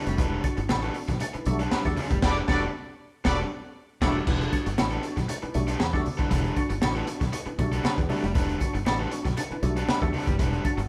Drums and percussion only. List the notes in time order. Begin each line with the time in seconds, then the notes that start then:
0.06 closed hi-hat
0.18 kick, closed hi-hat, muted conga
0.44 kick, closed hi-hat, muted conga
0.57 closed hi-hat
0.69 snare, high conga
0.83 closed hi-hat
0.94 open hi-hat
1.08 kick, snare, closed hi-hat
1.20 closed hi-hat, muted conga
1.34 closed hi-hat
1.45 closed hi-hat, muted conga, low conga
1.59 closed hi-hat
1.72 snare, high conga
1.85 kick, snare, closed hi-hat
1.97 open hi-hat, high conga
2.10 kick, closed hi-hat
2.22 kick, snare, crash
2.48 kick, snare
3.25 kick, snare
4.01 kick, snare, crash
4.27 kick, crash
4.41 closed hi-hat
4.53 kick, closed hi-hat, muted conga
4.66 closed hi-hat
4.78 snare, high conga
4.91 closed hi-hat
5.03 closed hi-hat
5.17 kick, snare, closed hi-hat
5.29 closed hi-hat, muted conga
5.42 closed hi-hat
5.54 closed hi-hat, muted conga, low conga
5.68 closed hi-hat
5.80 snare, high conga
5.93 kick, snare
6.06 open hi-hat, high conga
6.19 kick, closed hi-hat
6.31 kick, closed hi-hat
6.44 closed hi-hat
6.56 kick, closed hi-hat, muted conga
6.70 closed hi-hat
6.82 snare, high conga
6.95 closed hi-hat
7.07 closed hi-hat
7.21 kick, snare, closed hi-hat, low conga
7.33 closed hi-hat, muted conga
7.46 closed hi-hat
7.59 kick, closed hi-hat, muted conga
7.72 closed hi-hat
7.84 snare, high conga
7.98 kick, closed hi-hat
8.10 open hi-hat, high conga
8.24 closed hi-hat
8.35 kick, closed hi-hat, muted conga
8.49 closed hi-hat
8.60 kick, closed hi-hat, muted conga
8.75 closed hi-hat
8.86 snare, high conga
9.11 closed hi-hat
9.25 kick, snare, closed hi-hat
9.37 closed hi-hat, muted conga
9.51 closed hi-hat
9.63 closed hi-hat, muted conga, low conga
9.76 closed hi-hat
9.88 snare, high conga
10.02 kick, closed hi-hat
10.14 open hi-hat, high conga
10.27 kick, closed hi-hat
10.39 kick, closed hi-hat
10.53 closed hi-hat
10.65 kick, closed hi-hat, muted conga
10.78 closed hi-hat